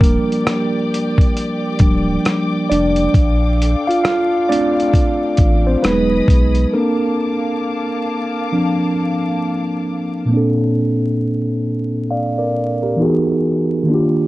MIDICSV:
0, 0, Header, 1, 5, 480
1, 0, Start_track
1, 0, Key_signature, -2, "major"
1, 0, Tempo, 895522
1, 1685, Time_signature, 4, 2, 24, 8
1, 7651, End_track
2, 0, Start_track
2, 0, Title_t, "String section"
2, 0, Program_c, 0, 48
2, 0, Note_on_c, 0, 67, 73
2, 0, Note_on_c, 0, 74, 69
2, 0, Note_on_c, 0, 79, 64
2, 0, Note_on_c, 0, 86, 82
2, 1668, Note_off_c, 0, 67, 0
2, 1668, Note_off_c, 0, 74, 0
2, 1679, Note_on_c, 0, 77, 67
2, 1681, Note_on_c, 0, 69, 72
2, 3105, Note_off_c, 0, 86, 0
2, 3106, Note_off_c, 0, 79, 0
2, 3108, Note_off_c, 0, 77, 0
2, 3109, Note_off_c, 0, 69, 0
2, 3128, Note_on_c, 0, 75, 70
2, 3128, Note_on_c, 0, 87, 82
2, 3129, Note_on_c, 0, 83, 65
2, 3131, Note_on_c, 0, 68, 72
2, 3602, Note_off_c, 0, 75, 0
2, 3602, Note_off_c, 0, 83, 0
2, 3602, Note_off_c, 0, 87, 0
2, 3603, Note_off_c, 0, 68, 0
2, 3606, Note_on_c, 0, 58, 72
2, 3606, Note_on_c, 0, 77, 68
2, 3606, Note_on_c, 0, 81, 66
2, 3608, Note_on_c, 0, 86, 75
2, 5506, Note_off_c, 0, 58, 0
2, 5506, Note_off_c, 0, 77, 0
2, 5506, Note_off_c, 0, 81, 0
2, 5507, Note_off_c, 0, 86, 0
2, 7651, End_track
3, 0, Start_track
3, 0, Title_t, "Tine electric piano"
3, 0, Program_c, 1, 4
3, 0, Control_c, 1, 64, 127
3, 0, Note_on_c, 1, 53, 55
3, 0, Note_on_c, 1, 55, 49
3, 0, Note_on_c, 1, 58, 71
3, 0, Note_on_c, 1, 62, 61
3, 0, Note_on_c, 1, 70, 91
3, 4, Note_off_c, 1, 70, 0
3, 4, Note_on_c, 1, 70, 78
3, 10, Note_off_c, 1, 58, 0
3, 10, Note_on_c, 1, 58, 61
3, 109, Note_off_c, 1, 53, 0
3, 111, Note_off_c, 1, 55, 0
3, 111, Note_off_c, 1, 62, 0
3, 463, Note_off_c, 1, 70, 0
3, 466, Note_off_c, 1, 58, 0
3, 963, Note_on_c, 1, 53, 45
3, 967, Note_on_c, 1, 55, 41
3, 969, Note_on_c, 1, 62, 53
3, 1183, Note_off_c, 1, 53, 0
3, 1185, Note_off_c, 1, 55, 0
3, 1185, Note_off_c, 1, 62, 0
3, 1445, Note_on_c, 1, 74, 97
3, 1454, Note_on_c, 1, 62, 83
3, 1693, Control_c, 1, 64, 0
3, 1782, Control_c, 1, 64, 127
3, 2056, Note_off_c, 1, 62, 0
3, 2077, Note_on_c, 1, 77, 97
3, 2084, Note_on_c, 1, 65, 73
3, 2092, Note_off_c, 1, 74, 0
3, 2157, Note_off_c, 1, 77, 0
3, 2162, Note_off_c, 1, 65, 0
3, 2163, Note_on_c, 1, 77, 104
3, 2169, Note_on_c, 1, 65, 81
3, 2388, Note_off_c, 1, 77, 0
3, 2390, Note_off_c, 1, 65, 0
3, 2406, Note_on_c, 1, 74, 106
3, 2408, Note_on_c, 1, 57, 55
3, 2410, Note_on_c, 1, 60, 53
3, 2414, Note_on_c, 1, 62, 78
3, 3017, Note_off_c, 1, 62, 0
3, 3038, Note_off_c, 1, 60, 0
3, 3038, Note_on_c, 1, 72, 80
3, 3044, Note_on_c, 1, 60, 63
3, 3053, Note_off_c, 1, 74, 0
3, 3105, Note_off_c, 1, 57, 0
3, 3122, Note_on_c, 1, 54, 52
3, 3124, Note_on_c, 1, 71, 90
3, 3125, Note_off_c, 1, 60, 0
3, 3126, Note_on_c, 1, 56, 51
3, 3130, Note_off_c, 1, 72, 0
3, 3130, Note_on_c, 1, 59, 66
3, 3130, Note_on_c, 1, 63, 60
3, 3132, Control_c, 1, 64, 0
3, 3236, Control_c, 1, 64, 127
3, 3464, Note_off_c, 1, 54, 0
3, 3466, Note_off_c, 1, 56, 0
3, 3468, Note_off_c, 1, 63, 0
3, 3586, Note_off_c, 1, 59, 0
3, 3607, Note_on_c, 1, 69, 52
3, 3610, Note_on_c, 1, 70, 77
3, 3612, Control_c, 1, 64, 0
3, 3612, Note_on_c, 1, 60, 48
3, 3615, Note_on_c, 1, 58, 59
3, 3615, Note_on_c, 1, 62, 59
3, 3619, Note_off_c, 1, 71, 0
3, 3715, Control_c, 1, 64, 127
3, 4565, Note_off_c, 1, 60, 0
3, 4566, Note_off_c, 1, 62, 0
3, 4568, Note_on_c, 1, 53, 49
3, 4571, Note_on_c, 1, 60, 44
3, 4572, Note_on_c, 1, 62, 53
3, 4785, Note_off_c, 1, 53, 0
3, 4787, Note_off_c, 1, 60, 0
3, 4787, Note_off_c, 1, 62, 0
3, 5026, Note_off_c, 1, 70, 0
3, 5029, Note_off_c, 1, 58, 0
3, 5496, Note_on_c, 1, 46, 67
3, 5505, Note_off_c, 1, 69, 0
3, 5512, Note_on_c, 1, 58, 58
3, 5526, Note_on_c, 1, 60, 56
3, 5531, Control_c, 1, 64, 0
3, 5541, Note_on_c, 1, 62, 61
3, 5558, Note_on_c, 1, 69, 74
3, 5625, Control_c, 1, 64, 127
3, 6247, Note_off_c, 1, 69, 0
3, 6488, Note_on_c, 1, 77, 56
3, 6491, Note_on_c, 1, 74, 51
3, 6628, Note_off_c, 1, 77, 0
3, 6629, Note_off_c, 1, 74, 0
3, 6636, Note_on_c, 1, 74, 62
3, 6639, Note_on_c, 1, 70, 50
3, 6863, Note_off_c, 1, 74, 0
3, 6864, Note_off_c, 1, 70, 0
3, 6875, Note_on_c, 1, 70, 58
3, 6878, Note_on_c, 1, 67, 45
3, 6929, Note_off_c, 1, 46, 0
3, 6937, Note_off_c, 1, 58, 0
3, 6944, Note_off_c, 1, 60, 0
3, 6949, Note_on_c, 1, 52, 66
3, 6952, Note_off_c, 1, 62, 0
3, 6958, Note_on_c, 1, 59, 62
3, 6964, Note_on_c, 1, 63, 60
3, 6972, Control_c, 1, 64, 0
3, 6974, Note_on_c, 1, 66, 62
3, 6979, Note_on_c, 1, 68, 74
3, 7071, Control_c, 1, 64, 127
3, 7102, Note_off_c, 1, 70, 0
3, 7104, Note_off_c, 1, 67, 0
3, 7413, Note_on_c, 1, 51, 64
3, 7427, Note_on_c, 1, 58, 62
3, 7437, Note_off_c, 1, 52, 0
3, 7442, Note_off_c, 1, 59, 0
3, 7443, Note_on_c, 1, 62, 60
3, 7444, Note_off_c, 1, 63, 0
3, 7450, Note_off_c, 1, 66, 0
3, 7451, Control_c, 1, 64, 0
3, 7452, Note_off_c, 1, 68, 0
3, 7458, Note_on_c, 1, 65, 57
3, 7473, Note_on_c, 1, 67, 77
3, 7532, Control_c, 1, 64, 127
3, 7651, Note_off_c, 1, 51, 0
3, 7651, Note_off_c, 1, 58, 0
3, 7651, Note_off_c, 1, 62, 0
3, 7651, Note_off_c, 1, 65, 0
3, 7651, Note_off_c, 1, 67, 0
3, 7651, End_track
4, 0, Start_track
4, 0, Title_t, "Sub bass"
4, 0, Program_c, 2, 38
4, 0, Note_on_c, 2, 27, 105
4, 93, Note_off_c, 2, 27, 0
4, 967, Note_on_c, 2, 26, 89
4, 1168, Note_off_c, 2, 26, 0
4, 1453, Note_on_c, 2, 29, 93
4, 1651, Note_off_c, 2, 29, 0
4, 1685, Note_on_c, 2, 34, 107
4, 2011, Note_off_c, 2, 34, 0
4, 2888, Note_on_c, 2, 33, 81
4, 3088, Note_off_c, 2, 33, 0
4, 3133, Note_on_c, 2, 28, 97
4, 3331, Note_off_c, 2, 28, 0
4, 3369, Note_on_c, 2, 35, 88
4, 3569, Note_off_c, 2, 35, 0
4, 7651, End_track
5, 0, Start_track
5, 0, Title_t, "Drums"
5, 4, Note_on_c, 9, 36, 92
5, 19, Note_on_c, 9, 42, 76
5, 58, Note_off_c, 9, 36, 0
5, 73, Note_off_c, 9, 42, 0
5, 172, Note_on_c, 9, 42, 33
5, 226, Note_off_c, 9, 42, 0
5, 251, Note_on_c, 9, 37, 107
5, 252, Note_on_c, 9, 42, 82
5, 304, Note_off_c, 9, 37, 0
5, 305, Note_off_c, 9, 42, 0
5, 504, Note_on_c, 9, 42, 77
5, 558, Note_off_c, 9, 42, 0
5, 632, Note_on_c, 9, 36, 83
5, 649, Note_on_c, 9, 42, 33
5, 686, Note_off_c, 9, 36, 0
5, 702, Note_off_c, 9, 42, 0
5, 733, Note_on_c, 9, 42, 72
5, 786, Note_off_c, 9, 42, 0
5, 959, Note_on_c, 9, 42, 67
5, 964, Note_on_c, 9, 36, 96
5, 1012, Note_off_c, 9, 42, 0
5, 1018, Note_off_c, 9, 36, 0
5, 1208, Note_on_c, 9, 42, 71
5, 1212, Note_on_c, 9, 37, 108
5, 1261, Note_off_c, 9, 42, 0
5, 1266, Note_off_c, 9, 37, 0
5, 1455, Note_on_c, 9, 42, 68
5, 1509, Note_off_c, 9, 42, 0
5, 1587, Note_on_c, 9, 42, 35
5, 1641, Note_off_c, 9, 42, 0
5, 1684, Note_on_c, 9, 36, 115
5, 1687, Note_on_c, 9, 42, 76
5, 1738, Note_off_c, 9, 36, 0
5, 1741, Note_off_c, 9, 42, 0
5, 1939, Note_on_c, 9, 42, 80
5, 1993, Note_off_c, 9, 42, 0
5, 2094, Note_on_c, 9, 42, 33
5, 2147, Note_off_c, 9, 42, 0
5, 2170, Note_on_c, 9, 37, 116
5, 2170, Note_on_c, 9, 42, 83
5, 2223, Note_off_c, 9, 37, 0
5, 2224, Note_off_c, 9, 42, 0
5, 2423, Note_on_c, 9, 42, 78
5, 2477, Note_off_c, 9, 42, 0
5, 2572, Note_on_c, 9, 42, 33
5, 2625, Note_off_c, 9, 42, 0
5, 2645, Note_on_c, 9, 36, 96
5, 2653, Note_on_c, 9, 42, 75
5, 2699, Note_off_c, 9, 36, 0
5, 2707, Note_off_c, 9, 42, 0
5, 2880, Note_on_c, 9, 42, 68
5, 2885, Note_on_c, 9, 36, 96
5, 2933, Note_off_c, 9, 42, 0
5, 2939, Note_off_c, 9, 36, 0
5, 3129, Note_on_c, 9, 42, 69
5, 3134, Note_on_c, 9, 37, 103
5, 3183, Note_off_c, 9, 42, 0
5, 3187, Note_off_c, 9, 37, 0
5, 3366, Note_on_c, 9, 36, 93
5, 3376, Note_on_c, 9, 42, 70
5, 3419, Note_off_c, 9, 36, 0
5, 3430, Note_off_c, 9, 42, 0
5, 3509, Note_on_c, 9, 42, 34
5, 3563, Note_off_c, 9, 42, 0
5, 7651, End_track
0, 0, End_of_file